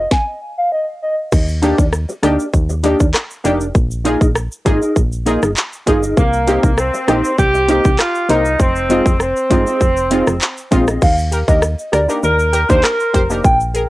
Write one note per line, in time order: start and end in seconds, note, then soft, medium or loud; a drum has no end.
0.11 0.25 G#5 medium
0.11 kick loud
0.11 snare medium
0.58 0.70 F5 medium
0.72 0.86 D#5 medium
1.02 1.16 D#5 medium
1.32 1.74 D#2 loud
1.32 kick loud
1.32 crash medium
1.32 shaker medium
1.48 shaker medium
1.62 1.75 A#3 medium
1.62 1.83 D4 medium
1.62 1.75 D4 medium
1.62 1.76 D#4 medium
1.62 1.83 G4 medium
1.62 1.76 G4 loud
1.62 1.83 A#4 medium
1.62 1.84 D5 medium
1.62 closed hi-hat medium
1.62 shaker medium
1.78 2.06 D#2 loud
1.78 kick loud
1.78 shaker medium
1.93 cross-stick medium
1.93 shaker medium
2.09 muted clean electric guitar stroke soft
2.09 shaker medium
2.23 2.38 D2 medium
2.23 2.36 A#3 medium
2.23 2.43 D4 medium
2.23 2.36 D4 medium
2.23 2.36 D#4 medium
2.23 2.44 G4 medium
2.23 2.37 G4 loud
2.23 2.44 A#4 medium
2.23 2.44 D5 medium
2.23 cross-stick medium
2.23 closed hi-hat medium
2.23 shaker medium
2.40 shaker medium
2.54 2.95 D#2 loud
2.54 kick medium
2.54 shaker medium
2.69 muted clean electric guitar stroke medium
2.69 shaker medium
2.83 2.96 A#3 medium
2.83 3.04 D4 medium
2.83 2.97 D4 medium
2.83 2.97 D#4 medium
2.83 3.04 G4 medium
2.83 2.97 G4 loud
2.83 3.05 A#4 medium
2.83 3.05 D5 medium
2.83 closed hi-hat medium
2.83 shaker medium
3.00 3.13 D#2 medium
3.00 kick medium
3.00 shaker medium
3.14 cross-stick loud
3.14 clap loud
3.14 shaker medium
3.30 shaker medium
3.44 3.72 F1 loud
3.44 3.57 A#3 medium
3.44 3.65 D4 medium
3.44 3.57 D4 medium
3.44 3.58 D#4 medium
3.44 3.65 G4 medium
3.44 3.58 G4 loud
3.44 3.65 A#4 medium
3.44 3.65 D5 medium
3.44 closed hi-hat medium
3.44 shaker medium
3.60 shaker medium
3.75 4.16 A#1 loud
3.75 kick loud
3.75 shaker medium
3.91 shaker medium
4.04 4.18 A#3 loud
4.04 4.25 D#4 medium
4.04 4.18 D#4 medium
4.04 4.18 F4 medium
4.04 4.26 G#4 medium
4.04 4.18 G#4 loud
4.04 4.26 A#4 medium
4.04 4.26 D#5 medium
4.04 closed hi-hat medium
4.04 shaker medium
4.21 4.48 A#1 loud
4.21 kick loud
4.21 shaker medium
4.35 cross-stick loud
4.35 shaker medium
4.52 shaker medium
4.65 4.80 G#1 medium
4.65 4.78 A#3 medium
4.65 4.78 D#4 medium
4.65 4.82 D#4 medium
4.65 4.79 F4 medium
4.65 4.81 G#4 medium
4.65 4.79 G#4 loud
4.65 4.81 A#4 medium
4.65 4.80 D#5 medium
4.65 kick medium
4.65 closed hi-hat medium
4.65 shaker medium
4.82 4.97 D#4 medium
4.82 4.97 G#4 medium
4.82 4.97 A#4 medium
4.82 4.96 D#5 medium
4.82 shaker medium
4.96 5.38 A#1 loud
4.96 kick medium
4.96 shaker medium
5.12 shaker medium
5.26 5.39 A#3 medium
5.26 5.47 D#4 medium
5.26 5.39 D#4 medium
5.26 5.39 F4 medium
5.26 5.47 G#4 medium
5.26 5.40 G#4 loud
5.26 5.47 A#4 loud
5.26 5.47 D#5 medium
5.26 closed hi-hat medium
5.26 shaker medium
5.43 5.55 G1 loud
5.43 cross-stick medium
5.43 shaker medium
5.57 clap loud
5.57 shaker medium
5.73 shaker medium
5.86 6.14 G1 medium
5.86 5.99 A#3 loud
5.86 6.03 D#4 medium
5.86 6.00 D#4 medium
5.86 6.00 F4 medium
5.86 6.03 G#4 medium
5.86 6.00 G#4 loud
5.86 6.02 A#4 medium
5.86 6.02 D#5 medium
5.86 kick medium
5.86 closed hi-hat medium
5.86 shaker medium
6.03 6.18 D#4 soft
6.03 6.18 G#4 medium
6.03 6.18 A#4 medium
6.03 6.17 D#5 medium
6.03 shaker medium
6.17 6.59 C2 loud
6.17 6.74 A#3 loud
6.17 kick loud
6.17 shaker medium
6.33 shaker medium
6.47 6.60 A#3 medium
6.47 6.60 C4 medium
6.47 6.68 D#4 medium
6.47 6.61 D#4 medium
6.47 6.68 G4 medium
6.47 6.61 G4 loud
6.47 6.68 A#4 medium
6.47 6.69 D#5 medium
6.47 closed hi-hat medium
6.47 shaker medium
6.63 6.91 C2 medium
6.63 kick loud
6.63 shaker medium
6.78 7.39 C4 loud
6.78 cross-stick medium
6.78 shaker medium
6.94 muted clean electric guitar stroke soft
6.94 shaker medium
7.08 7.23 A#1 medium
7.08 7.21 A#3 medium
7.08 7.21 C4 medium
7.08 7.28 D#4 loud
7.08 7.21 D#4 medium
7.08 7.29 G4 medium
7.08 7.21 G4 loud
7.08 7.29 A#4 medium
7.08 7.29 D#5 loud
7.08 cross-stick medium
7.08 closed hi-hat medium
7.08 shaker medium
7.25 shaker medium
7.38 7.80 C2 loud
7.38 7.95 G4 loud
7.38 kick medium
7.38 shaker medium
7.54 muted clean electric guitar stroke soft
7.54 shaker medium
7.68 7.81 A#3 medium
7.68 7.82 C4 medium
7.68 7.89 D#4 medium
7.68 7.82 D#4 medium
7.68 7.89 G4 medium
7.68 7.82 G4 loud
7.68 7.89 A#4 medium
7.68 7.90 D#5 medium
7.68 closed hi-hat medium
7.68 shaker medium
7.85 7.98 C2 loud
7.85 kick loud
7.85 shaker medium
7.99 8.29 F4 loud
7.99 cross-stick loud
7.99 clap loud
7.99 shaker medium
8.15 shaker medium
8.29 8.56 C2 medium
8.29 8.42 A#3 medium
8.29 8.42 C4 medium
8.29 8.50 D#4 medium
8.29 8.60 D#4 loud
8.29 8.42 D#4 medium
8.29 8.50 G4 medium
8.29 8.50 A#4 medium
8.29 8.43 A#4 loud
8.29 8.50 D#5 loud
8.29 closed hi-hat medium
8.29 shaker medium
8.45 shaker medium
8.60 9.01 F1 loud
8.60 9.19 C4 loud
8.60 kick loud
8.60 shaker medium
8.76 shaker medium
8.89 9.02 G#3 medium
8.89 9.10 C4 medium
8.89 9.03 C4 medium
8.89 9.03 D#4 medium
8.89 9.10 F4 medium
8.89 9.03 F4 loud
8.89 9.11 G#4 medium
8.89 9.11 D#5 medium
8.89 closed hi-hat medium
8.89 shaker medium
9.06 9.33 F1 loud
9.06 kick loud
9.06 shaker medium
9.20 10.68 C4 medium
9.20 cross-stick medium
9.20 shaker medium
9.36 shaker medium
9.50 9.65 G1 loud
9.50 9.63 G#3 medium
9.50 9.67 C4 medium
9.50 9.63 C4 medium
9.50 9.64 D#4 medium
9.50 9.66 F4 medium
9.50 9.64 F4 loud
9.50 9.66 G#4 medium
9.50 9.65 D#5 medium
9.50 kick loud
9.50 closed hi-hat medium
9.50 shaker medium
9.66 9.82 C4 medium
9.66 9.82 F4 medium
9.66 9.81 G#4 medium
9.66 9.81 D#5 medium
9.66 shaker medium
9.81 10.22 F1 loud
9.81 kick medium
9.81 shaker medium
9.97 shaker medium
10.10 10.24 G#3 medium
10.10 10.31 C4 medium
10.10 10.24 C4 medium
10.10 10.24 D#4 medium
10.10 10.32 F4 medium
10.10 10.24 F4 loud
10.10 10.32 G#4 medium
10.10 10.32 D#5 loud
10.10 closed hi-hat medium
10.10 shaker medium
10.27 10.40 F1 loud
10.27 cross-stick medium
10.27 shaker medium
10.41 clap loud
10.41 shaker medium
10.57 shaker medium
10.71 10.99 A#1 loud
10.71 10.84 G#3 loud
10.71 10.84 C4 medium
10.71 10.88 C4 medium
10.71 10.85 D#4 medium
10.71 10.87 F4 medium
10.71 10.85 F4 loud
10.71 10.87 G#4 medium
10.71 10.86 D#5 loud
10.71 kick medium
10.71 closed hi-hat medium
10.71 shaker medium
10.87 11.03 C4 medium
10.87 11.03 F4 medium
10.87 11.03 G#4 medium
10.87 11.02 D#5 medium
10.87 cross-stick medium
10.87 shaker medium
11.02 11.43 D#2 loud
11.02 11.16 F5 loud
11.02 kick loud
11.02 crash loud
11.02 shaker medium
11.18 shaker medium
11.32 11.38 G4 medium
11.32 11.39 A#4 medium
11.32 closed hi-hat medium
11.32 shaker medium
11.48 11.75 D#2 loud
11.48 11.59 A#3 medium
11.48 11.60 D4 medium
11.48 11.60 D#4 medium
11.48 11.60 G4 medium
11.48 11.60 A#4 medium
11.48 11.60 D#5 medium
11.48 kick loud
11.48 shaker medium
11.62 cross-stick loud
11.62 shaker medium
11.79 shaker medium
11.92 12.07 D2 medium
11.92 11.99 G4 medium
11.92 12.00 A#4 medium
11.92 12.07 D5 medium
11.92 cross-stick loud
11.92 closed hi-hat medium
11.92 shaker medium
12.08 12.20 A#3 medium
12.08 12.20 D4 medium
12.08 12.20 D#4 medium
12.08 12.21 G4 medium
12.08 12.21 A#4 medium
12.08 shaker medium
12.23 12.65 D#2 loud
12.23 12.66 A#4 loud
12.23 shaker medium
12.39 shaker medium
12.53 12.60 G4 loud
12.53 12.60 A#4 loud
12.53 closed hi-hat medium
12.53 shaker medium
12.69 12.82 D#2 loud
12.69 12.81 A#3 medium
12.69 12.81 D4 medium
12.69 12.81 D#4 medium
12.69 12.81 G4 medium
12.69 12.81 A#4 medium
12.69 12.84 C5 loud
12.69 kick loud
12.69 shaker medium
12.84 13.30 A#4 loud
12.84 cross-stick loud
12.84 clap loud
12.84 shaker medium
13.00 shaker medium
13.14 13.41 F1 loud
13.14 13.20 G4 loud
13.14 13.21 C5 loud
13.14 kick medium
13.14 closed hi-hat medium
13.14 shaker medium
13.30 13.41 A#3 medium
13.30 13.42 D4 medium
13.30 13.42 D#4 medium
13.30 13.42 G4 medium
13.30 13.42 A#4 medium
13.30 shaker medium
13.44 13.86 A#1 loud
13.44 13.58 G5 loud
13.44 kick loud
13.44 shaker medium
13.60 shaker medium
13.74 13.81 G#4 medium
13.74 13.82 A#4 medium
13.74 closed hi-hat medium
13.74 shaker medium